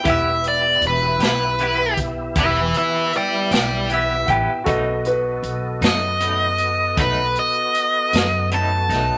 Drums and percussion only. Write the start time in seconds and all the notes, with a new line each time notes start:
0.05 kick, closed hi-hat
0.44 closed hi-hat
0.82 closed hi-hat
1.20 snare, closed hi-hat
1.59 closed hi-hat
1.97 kick, closed hi-hat
2.36 kick, closed hi-hat
2.74 closed hi-hat
3.13 closed hi-hat
3.51 snare, closed hi-hat
3.90 closed hi-hat
4.28 kick, closed hi-hat
4.66 kick, closed hi-hat
5.05 closed hi-hat
5.43 closed hi-hat
5.82 snare, closed hi-hat
6.20 closed hi-hat
6.58 closed hi-hat
6.97 kick, closed hi-hat
7.36 closed hi-hat
7.75 closed hi-hat
8.13 snare, closed hi-hat
8.51 closed hi-hat
8.90 snare, closed hi-hat